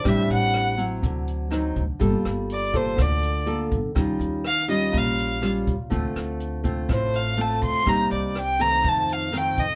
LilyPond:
<<
  \new Staff \with { instrumentName = "Violin" } { \time 4/4 \key g \minor \tempo 4 = 123 e''8 fis''4 r2 r8 | r4 d''8 c''8 d''4 r4 | r4 f''8 ees''8 f''4 r4 | r2 c''8 f''8 a''8 c'''8 |
bes''8 d''8 g''8 bes''8 a''8 f''8 g''8 ees''8 | }
  \new Staff \with { instrumentName = "Nylon-string guitar" } { \time 4/4 \key g \minor << { <g c' d'>4. <fis c'>4. <fis c' ees'>8 r8 | <bes f' a'>4. <bes f' a'>4. <bes f' a'>8 r8 | <g des' f'>4 r8 <g des' f'>4. <g des' f'>8 r8 | <a c' f'>4. <a c' f'>4. <a c' f'>4 |
<g bes ees'>4 r8 <ees a c'>4. <ees a c'>8 r8 | } \\ { a,2 d2 | g2 d2 | ees2 bes,2 | d2 a,2 |
c2 f,2 | } >> }
  \new Staff \with { instrumentName = "Upright bass" } { \clef bass \time 4/4 \key g \minor a,,16 r16 a,,4. d,4. d,16 r16 | g,,16 r16 g,,4. d,4. g,,16 r16 | ees,16 r16 ees,4. bes,,4. ees,16 r16 | d,16 r16 d,4. a,,4. d,16 r16 |
c,16 r16 c,4. f,4. f,16 r16 | }
  \new DrumStaff \with { instrumentName = "Drums" } \drummode { \time 4/4 <hh bd ss>8 hh8 <hh ss>8 hh8 <hh bd>8 hh8 <hh ss>8 <hh bd>8 | <hh bd>8 <hh ss>8 hh8 <hh bd>8 <hh bd ss>8 hh8 hh8 <hh bd>8 | <hh bd ss>8 hh8 <hh ss>8 hh8 <hh bd>8 hh8 <hh ss>8 <hh bd>8 | <hh bd>8 <hh ss>8 hh8 <hh bd>8 <hh bd ss>8 hh8 hh8 <hh bd>8 |
<hh bd ss>8 hh8 <hh ss>8 hh8 <hh bd>8 hh8 <hh ss>8 <hh bd>8 | }
>>